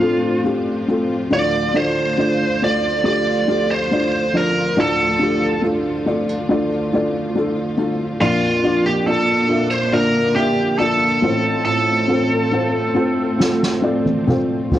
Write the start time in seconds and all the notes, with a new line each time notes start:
Already playing: A1 A2 F3 D4 F4 C5
0.00 A3 C4 F4 A4
0.44 A3 C4 F4 G4
0.88 A3 C4 F4 A4
1.30 D2 A2 D3 A3 D4 F4 D5
1.74 A3 D4 F4 C5 D5
2.18 A3 D4 F4 D5
2.62 A3 D4 F4 D5
3.04 A3 D4 F4 G4 D5
3.48 A3 D4 F4 G4
3.71 C5
3.91 A3 D4 F4 D5
4.34 F3 D4 F4 A#4 D5
4.77 D2 A2 D3 A3 D4 F4 A4 D5
5.19 A3 D4 F4 G4
5.62 A3 D4 F4 A4
6.06 A3 C4 D4 F4 D5
6.29 D4
6.49 A3 D4 F4 D5
6.93 A3 D4 F4 D5
7.35 A3 D4 F4 A4
7.77 A3 D4 F4 A4
8.20 A#1 F2 A#2 A#3 D4 F4 D5
8.64 A#3 D4 F4 D5
8.86 G4
9.06 A#3 D4 F4 A4 D5
9.49 A#3 C4 D4 F4 E5
9.71 D4 C5
9.92 D3 A#3 D4 F4 A#4 D5
10.35 A#3 D4 F4 G4 E5
10.79 A#3 D4 F4 A4 D5
11.21 A1 A2 A3 C4 F4 C5
11.65 A2 F4 A4
12.08 A3 C4 F4 C5
12.51 A3 C4 F4 C5
12.95 A3 C4 F4 C5
13.39 F3 A3 C4 F4 A4, snare
13.63 snare
13.82 A3 C4 F4 D5
14.06 high tom
14.27 A3 C4 F4 C5, mid tom
14.71 A3 C4 F4 C5, floor tom